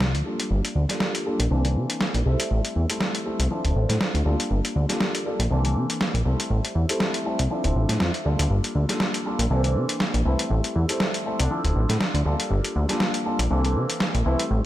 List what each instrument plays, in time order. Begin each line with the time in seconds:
Already playing: analog synth bass C2, grand piano F3 C4 D4 E4 A4
0.00 snare
0.14 analog synth bass D2, closed hi-hat
0.25 grand piano G3 A#3 D4 F4 A4
0.40 closed hi-hat
0.51 analog synth bass G1
0.65 closed hi-hat
0.75 analog synth bass D2
0.89 grand piano G3 A#3 D4 F4 A4, snare, closed hi-hat
1.00 snare
1.15 closed hi-hat
1.25 grand piano G3 A#3 D4 F4 A4
1.39 analog synth bass A#1, closed hi-hat
1.51 analog synth bass C2, grand piano E3 A#3 C4 D4 A4
1.64 grand piano E3 A#3 C4 D4 A4, closed hi-hat
1.76 analog synth bass C3
1.90 closed hi-hat
2.01 snare
2.14 analog synth bass A#1, closed hi-hat
2.25 analog synth bass C2, grand piano G3 A3 C4 E4 A4
2.40 closed hi-hat
2.51 analog synth bass A1
2.65 closed hi-hat
2.76 analog synth bass E2
2.90 grand piano G3 A3 C4 E4 A4, closed hi-hat
3.00 snare
3.15 closed hi-hat
3.26 grand piano G3 A3 C4 E4 A4
3.40 analog synth bass C2, closed hi-hat
3.51 grand piano F3 C4 D4 E4 A4
3.64 analog synth bass D1, grand piano F3 C4 D4 A4, closed hi-hat
3.76 analog synth bass A1
3.89 analog synth bass A2, snare, closed hi-hat
4.01 snare
4.15 analog synth bass D2, closed hi-hat
4.25 analog synth bass D2, grand piano G3 A#3 D4 F4 A4
4.40 closed hi-hat
4.51 analog synth bass G1
4.65 closed hi-hat
4.76 analog synth bass D2
4.89 grand piano G3 A#3 D4 F4 A4, snare, closed hi-hat
5.00 snare
5.15 closed hi-hat
5.26 grand piano G3 A#3 D4 F4 A4
5.39 analog synth bass A#1, closed hi-hat
5.51 analog synth bass C2, grand piano E3 A#3 C4 D4 A4
5.64 grand piano E3 A#3 C4 D4 A4, closed hi-hat
5.75 analog synth bass C3
5.90 closed hi-hat
6.01 snare
6.14 analog synth bass A#1, closed hi-hat
6.25 analog synth bass C2, grand piano G3 A3 C4 E4 A4
6.40 closed hi-hat
6.50 analog synth bass A1
6.65 closed hi-hat
6.75 analog synth bass E2
6.89 grand piano G3 A3 C4 E4 A4, closed hi-hat
7.00 snare
7.14 closed hi-hat
7.25 grand piano G3 A3 C4 E4 A4
7.39 analog synth bass C2, closed hi-hat
7.50 grand piano F3 C4 D4 E4 A4
7.64 analog synth bass D1, grand piano F3 C4 D4 E4 A4, closed hi-hat
7.76 analog synth bass A1
7.89 analog synth bass A2, snare, closed hi-hat
8.00 analog synth bass F2, snare
8.14 closed hi-hat
8.25 analog synth bass D2, grand piano G3 A#3 D4 F4 A4
8.39 analog synth bass D2, closed hi-hat
8.50 analog synth bass G1
8.64 closed hi-hat
8.75 analog synth bass D2
8.89 grand piano G3 A#3 D4 F4 A4, snare, closed hi-hat
9.00 snare
9.14 closed hi-hat
9.25 grand piano G3 A#3 D4 F4 A4
9.39 analog synth bass A#1, closed hi-hat
9.50 analog synth bass C2, grand piano E3 A#3 C4 D4 A4
9.64 grand piano E3 A#3 C4 D4, closed hi-hat
9.76 analog synth bass C3
9.89 closed hi-hat
10.00 snare
10.14 analog synth bass A#1, closed hi-hat
10.25 analog synth bass C2, horn section E3 E4, grand piano G3 A3 C4 E4 A4
10.39 closed hi-hat
10.50 analog synth bass A1
10.64 closed hi-hat
10.76 analog synth bass E2
10.89 grand piano G3 A3 C4 E4 A4, closed hi-hat
11.00 snare
11.14 closed hi-hat
11.25 grand piano G3 A3 C4 E4 A4
11.40 analog synth bass C2, horn section D3 D4, closed hi-hat
11.50 grand piano F3 C4 D4 E4 A4
11.64 analog synth bass D1, grand piano F3 C4 D4 E4 A4, closed hi-hat
11.76 analog synth bass A1
11.89 analog synth bass A2, snare, closed hi-hat
12.01 snare
12.14 analog synth bass D2, closed hi-hat
12.25 analog synth bass D2, grand piano G3 A#3 D4 F4 A4
12.40 closed hi-hat
12.51 analog synth bass G1
12.64 closed hi-hat
12.76 analog synth bass D2
12.89 grand piano G3 A#3 D4 F4 A4, snare, closed hi-hat
13.00 snare
13.14 closed hi-hat
13.25 grand piano G3 A#3 D4 F4 A4
13.39 analog synth bass A#1, closed hi-hat
13.50 analog synth bass C2, grand piano E3 A#3 C4 D4 A4
13.64 grand piano E3 A#3 C4 D4 A4, closed hi-hat
13.76 analog synth bass C3
13.90 closed hi-hat
14.00 snare
14.15 analog synth bass A#1, closed hi-hat
14.25 analog synth bass C2, horn section E3 E4, grand piano G3 A3 C4 E4 A4
14.39 closed hi-hat
14.51 analog synth bass A1